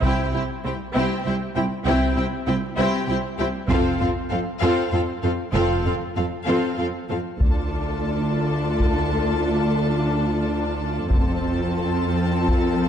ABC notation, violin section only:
X:1
M:6/8
L:1/8
Q:3/8=65
K:Dm
V:1 name="Violin section"
[Gg] [Gg] [Gg] [Gg] [Gg] [Gg] | [Gg] [Gg] [Gg] [Gg] [Gg] [Gg] | [Af] [Af] [Af] [Af] [Af] [Af] | [Af] [Af] [Af] [Af] [Af] [Af] |
[Aa]6- | [Aa]6 | [Aa]6 |]